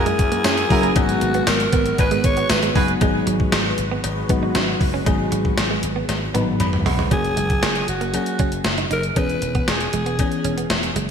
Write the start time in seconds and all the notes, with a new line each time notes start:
Already playing: F#2 F#3 A#3 C#4 E4 G#4 A#4
0.06 G#3, closed hi-hat
0.19 F#2, muted clean electric guitar stroke, kick, closed hi-hat
0.32 A#3, closed hi-hat
0.44 F#2 C#4, snare, closed hi-hat, tambourine, cowbell
0.57 closed hi-hat
0.70 F#1 F#3 A#3 C#4 E4 F#4 A#4, muted clean electric guitar stroke, kick, open hi-hat
0.83 A#3, closed hi-hat
0.96 G#1 F#3 G#3 B3 D#4 F#4 G#4, kick, closed hi-hat, cowbell
1.09 closed hi-hat
1.21 G#1, muted clean electric guitar stroke, closed hi-hat
1.34 B3, closed hi-hat
1.47 G#1 A#4, snare, closed hi-hat, tambourine, cowbell
1.60 closed hi-hat
1.73 G#1 B3, kick, closed hi-hat
1.86 closed hi-hat
1.98 G#1 F#4 G#4 B4, kick, closed hi-hat, cowbell
2.11 G#3, closed hi-hat
2.24 G#1 C#5, muted clean electric guitar stroke, kick, closed hi-hat
2.37 B3, closed hi-hat
2.49 G#1 B4, muted clean electric guitar stroke, snare, closed hi-hat, tambourine, cowbell
2.63 G#3, closed hi-hat
2.75 F#1 F#3 G#3 B3 D#4 F#4 G#4 B4, kick, open hi-hat
2.88 closed hi-hat
3.01 G#1 F#3 G#3 B3 D#4 F#4 G#4 B4, kick, closed hi-hat, cowbell
3.27 G#1 F#3, closed hi-hat
3.40 muted clean electric guitar stroke, kick
3.52 G#1 G#3, snare, closed hi-hat, cowbell
3.66 muted clean electric guitar stroke
3.78 G#1, closed hi-hat
3.91 B3
4.04 G#1, muted clean electric guitar stroke, closed hi-hat, cowbell
4.29 G#1 F#3 B3 D#4 F#4, kick, closed hi-hat
4.43 D#4
4.55 G#1 C#4, snare, closed hi-hat, cowbell
4.81 F#1, muted clean electric guitar stroke, kick, open hi-hat
4.94 C#4
5.06 G#1 F#3 G#3 B3 D#4 G#4, kick, closed hi-hat, cowbell
5.32 G#1 F#3, closed hi-hat
5.45 muted clean electric guitar stroke, kick
5.57 G#1, snare, closed hi-hat, cowbell
5.71 G#3
5.83 G#1, muted clean electric guitar stroke, closed hi-hat
5.96 B3
6.09 G#1, snare, closed hi-hat, cowbell
6.34 G#1 F#3 B3 D#4 B4, closed hi-hat, high tom
6.60 G#1 B5, muted clean electric guitar stroke, closed hi-hat, mid tom, cowbell
6.73 mid tom
6.86 E1 G#3 F#5, floor tom, open hi-hat
6.99 G#3, floor tom
7.11 F#1 F#3 A#3 C#4 G#4, kick, closed hi-hat, cowbell
7.25 closed hi-hat
7.37 F#1 G#3, closed hi-hat
7.50 muted clean electric guitar stroke, kick, closed hi-hat
7.63 F#1 A#3, snare, closed hi-hat, cowbell
7.75 muted clean electric guitar stroke, closed hi-hat
7.88 F#1 F#4, closed hi-hat
8.01 A#3, closed hi-hat
8.13 F#3 A#3 C#4 F#4 G#4, closed hi-hat, cowbell
8.26 closed hi-hat
8.39 F#1 C#4, kick, closed hi-hat
8.52 closed hi-hat
8.64 F#1, muted clean electric guitar stroke, snare, closed hi-hat, cowbell
8.78 D#4, closed hi-hat
8.91 F#1 D#4 A#4, closed hi-hat
9.03 closed hi-hat
9.16 E1 E3 B3 C#4 G#4 B4, kick, closed hi-hat, cowbell
9.29 closed hi-hat
9.42 E1, muted clean electric guitar stroke, closed hi-hat
9.55 B3, kick, closed hi-hat
9.68 E1 G#4, muted clean electric guitar stroke, snare, closed hi-hat, cowbell
9.80 closed hi-hat
9.93 E1 G#3, closed hi-hat
10.06 B3, closed hi-hat
10.19 E3 B3 C#4 G#4, muted clean electric guitar stroke, kick, closed hi-hat, cowbell
10.32 closed hi-hat
10.44 E1 C#4, closed hi-hat
10.58 B3, closed hi-hat
10.70 E1, snare, closed hi-hat, cowbell
10.83 closed hi-hat
10.96 F#1 G#3, closed hi-hat